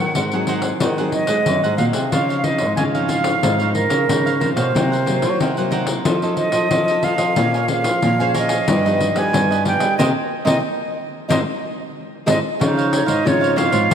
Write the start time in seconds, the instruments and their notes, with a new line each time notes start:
Already playing: nylon-string guitar G#2 D#3 F#3 C4 D#4, flute F#5
0.15 nylon-string guitar G#2 D#3, cavaquinho D#4 G#4 C5 F#5, pandeiro
0.32 nylon-string guitar F#3 C4 D#4, cavaquinho G#4 C5 F#5, pandeiro
0.47 cavaquinho D#4 G#4 C5 F#5, pandeiro
0.62 cavaquinho G#4 C5 F#5, pandeiro
0.80 nylon-string guitar G#2 D#3, cavaquinho D#4 G#4 C5 F#5, pandeiro
0.98 nylon-string guitar F#3 C4 D#4, cavaquinho G#4 C5 F#5, pandeiro
1.12 flute D#5, muted cavaquinho stroke, pandeiro
1.27 nylon-string guitar G#3, cavaquinho G#4 C5 F#5, pandeiro
1.46 nylon-string guitar F#2 D#3 F#3 C4 D#4, pandeiro
1.63 nylon-string guitar G#2, cavaquinho G#4 C5 F#5, pandeiro
1.77 nylon-string guitar A#2 F#3 C4 D#4, cavaquinho D#4 G#4 C5 F#5, flute F5, pandeiro
1.93 nylon-string guitar C3, cavaquinho G#4 C5 F#5, pandeiro
2.10 nylon-string guitar C#3 F3 C4 D#4, cavaquinho F4 C5 C#5 F5, flute F5, pandeiro
2.29 cavaquinho C5 C#5 F5, pandeiro
2.38 flute F5
2.43 nylon-string guitar F3 C4 D#4, flute D#5, muted cavaquinho stroke, pandeiro
2.58 nylon-string guitar G#2, pandeiro
2.76 nylon-string guitar G#2 C#3, cavaquinho F4 C5 C#5 F5, flute G#5, pandeiro
2.95 nylon-string guitar F3 C4 D#4, cavaquinho C5 C#5 F5, pandeiro
3.07 cavaquinho F4 C5 C#5 F5, flute F5, pandeiro
3.24 cavaquinho C5 C#5 F5, pandeiro
3.43 nylon-string guitar G#2 C#3, cavaquinho F4 C5 C#5 F5, pandeiro
3.59 nylon-string guitar F3 C4 D#4, cavaquinho C5 C#5 F5, pandeiro
3.74 flute A#4, muted cavaquinho stroke, pandeiro
3.89 nylon-string guitar C#3, cavaquinho C5 C#5 F5, pandeiro
4.09 nylon-string guitar G#2 C#3 F3 C4 D#4, pandeiro
4.26 cavaquinho C5 C#5 F5, pandeiro
4.38 nylon-string guitar F3 C4, cavaquinho F4 C5 C#5 F5, flute A#4, pandeiro
4.43 nylon-string guitar D#4
4.54 nylon-string guitar B2, flute C5, cavaquinho C5 C#5 F5, pandeiro
4.74 nylon-string guitar C3 F#3 A#3 D#4, cavaquinho D#4 A#4 C5 F#5, pandeiro
4.92 cavaquinho A#4 C5 F#5, pandeiro
5.06 nylon-string guitar F#3 A#3 D#4, muted cavaquinho stroke, pandeiro
5.22 nylon-string guitar F#3, pandeiro
5.40 nylon-string guitar C3, cavaquinho D#4 A#4 C5 F#5, pandeiro
5.57 nylon-string guitar F#3 A#3 D#4, cavaquinho A#4 C5 F#5, pandeiro
5.71 cavaquinho D#4 A#4 C5 F#5, pandeiro
5.87 cavaquinho A#4 C5 F#5, pandeiro
6.05 nylon-string guitar F3 C#4 D#4 A4, cavaquinho F4 A4 C5 D#5, pandeiro
6.22 nylon-string guitar C#4 D#4 A4, cavaquinho A4 C5 D#5, pandeiro
6.37 flute D#5, muted cavaquinho stroke, pandeiro
6.52 nylon-string guitar F3, cavaquinho A4 C5 D#5, pandeiro
6.70 nylon-string guitar C3 F3 C#4 D#4 A4, pandeiro
6.88 cavaquinho A4 C5 D#5, pandeiro
7.03 nylon-string guitar C#4 D#4 A4, cavaquinho F4 A4 C5 D#5, flute F5, pandeiro
7.18 nylon-string guitar F3, cavaquinho A4 C5 D#5, pandeiro
7.36 nylon-string guitar A#2 A#3 C#4 G#4 C5, cavaquinho A#4 C#5 F5 G#5, pandeiro
7.54 cavaquinho C#5 F5 G#5, pandeiro
7.68 nylon-string guitar C#4 G#4 C5, flute F5, muted cavaquinho stroke, pandeiro
7.84 nylon-string guitar F3, pandeiro
8.02 nylon-string guitar A#2 F3, cavaquinho A#4 C#5 F5 G#5, pandeiro
8.20 nylon-string guitar C#4 G#4 C5, cavaquinho C#5 F5 G#5, pandeiro
8.34 cavaquinho A#4 C#5 F5 G#5, flute D#5, pandeiro
8.49 cavaquinho C#5 F5 G#5, pandeiro
8.68 nylon-string guitar G2 F3 B3 D#4, cavaquinho F4 G4 B4 D#5, pandeiro
8.85 nylon-string guitar F3 B3 D#4, cavaquinho G4 B4 D#5, pandeiro
9.00 muted cavaquinho stroke, pandeiro
9.16 nylon-string guitar G3, cavaquinho G4 B4 D#5, flute G#5, pandeiro
9.33 nylon-string guitar G2 F3 B3 D#4, pandeiro
9.51 cavaquinho G4 B4 D#5, pandeiro
9.65 nylon-string guitar F3 B3 D#4, cavaquinho F4 G4 B4 D#5, flute G5, pandeiro
9.80 nylon-string guitar G3, cavaquinho G4 B4 D#5, pandeiro
9.97 nylon-string guitar C3 A#3 C4 D#4, cavaquinho A#4 C5 D#5, flute D#5, pandeiro
10.45 nylon-string guitar C3 A#3 C4 D#4, cavaquinho A#4 C5 D#5, flute D#5, pandeiro
11.28 nylon-string guitar G#2 G#3 C4 D#4, cavaquinho G#4 C5 D#5, flute D#5, pandeiro
12.26 nylon-string guitar G#2 G#3 C4 D#4, cavaquinho G#4 C5 D#5, flute D#5, pandeiro
12.59 nylon-string guitar C#3 F3 C4 D#4, clarinet D#4, cavaquinho F4 C5 C#5 F5, pandeiro
12.77 cavaquinho C5 C#5 F5, pandeiro
12.92 flute C#5, muted cavaquinho stroke, pandeiro
13.06 nylon-string guitar G#2, cavaquinho C5 C#5 F5, flute D#5, pandeiro
13.25 nylon-string guitar G#2 C#3 F3 C4 D#4, cavaquinho F4 C5 C#5 F5, clarinet F4, flute C#5, pandeiro
13.41 cavaquinho C5 C#5 F5, pandeiro
13.56 nylon-string guitar F3 C4 D#4, cavaquinho F4 C5 C#5 F5, flute F5, pandeiro
13.71 nylon-string guitar G#2, cavaquinho C5 C#5 F5, pandeiro
13.90 nylon-string guitar G#2 C#3, cavaquinho F4 C5 C#5